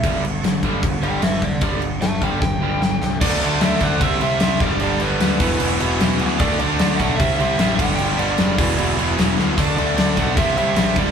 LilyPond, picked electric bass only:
\new Staff \with { instrumentName = "Picked electric bass" } { \clef bass \time 4/4 \key g \major \tempo 4 = 151 g,,4 g,,8 g,,8 g,,8 g,,8 g,,8 c,8 | g,,4 g,,8 g,,8 g,,8 g,,8 g,,8 c,8 | d,8 d,8 d,8 d,8 c,8 c,8 c,8 g,,8 | g,,8 g,,8 d,8 e,,8 e,,8 e,,8 e,,8 d,8 |
d,8 d,8 d,8 b,,8 c,8 c,8 a,,8 g,,8 | g,,8 g,,8 fis,,8 e,,8 e,,8 e,,8 e,,8 d,8 | d,8 d,8 d,8 b,,8 c,8 c,8 a,,8 g,,8 | }